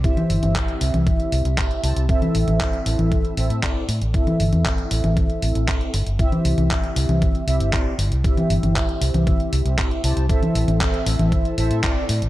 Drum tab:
HH |xxoxxxoxxxoxxxox|xxoxxxoxxxoxx-ox|xxoxxxoxxxoxxxox|xxoxxxoxxxoxx-ox|
CP |----x-------x---|----x-------x---|----x-------x---|----x-------x---|
CG |-o-o---o--------|-o-o---o--------|-o-o---o--------|-o-o---o--------|
BD |o---o---o---o---|o---o---o---o---|o---o---o---o---|o---o---o---o---|

HH |xxoxxxoxxxoxxxox|xxoxxxoxxxoxx-ox|
CP |----x-------x---|----x-------x---|
CG |-o-o---o--------|-o-o---o--------|
BD |o---o---o---o---|o---o---o---o---|